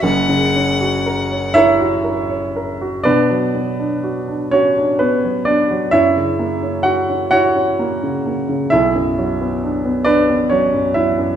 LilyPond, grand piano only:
<<
  \new Staff \with { instrumentName = "Grand piano" } { \time 6/8 \key b \minor \tempo 4. = 42 r4. <e' cis'' e''>4. | <d' b' d''>4. <cis' cis''>8 <b b'>8 <d' d''>8 | <e' cis'' e''>4 <fis' fis''>8 <fis' cis'' fis''>4. | <e' e''>4. <d' b' d''>8 <cis' cis''>8 <e' e''>8 | }
  \new Staff \with { instrumentName = "Grand piano" } { \time 6/8 \key b \minor <fis,, fis,>16 cis16 cis'16 fis'16 ais'16 cis''16 ais'16 fis'16 ais'16 cis''16 ais'16 fis'16 | b,16 fis16 b16 d'16 fis'16 d'16 fis'16 d'8 fis16 b16 fis16 | fis,16 cis16 ais16 cis'16 e'16 cis'16 e'16 cis'16 ais16 cis16 ais16 cis16 | b,,16 fis,16 fis16 b16 d'16 b8 b16 fis16 fis,16 fis16 fis,16 | }
>>